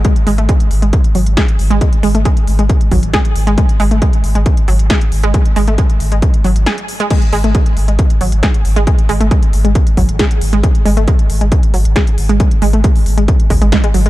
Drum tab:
CC |----------------|----------------|----------------|----------------|
HH |xxoxxxoxxxoxxxox|xxoxxxoxxxoxxxox|xxoxxxoxxxoxxxox|xxoxxxoxxxoxxxox|
SD |------------o---|------------o---|------------o---|------------o---|
BD |o---o---o---o---|o---o---o-o-o---|o---o---o---o---|o---o---o-------|

CC |x---------------|----------------|----------------|----------------|
HH |xxoxxxoxxxoxxxox|xxoxxxoxxxoxxxox|xxoxxxoxxxoxxxox|xxoxxooxxxoxxxox|
SD |------------o---|------------o---|------------o---|------------o---|
BD |o---o---o---o---|o---o---o-o-o---|o---o---o---o---|o---o---o-o-o---|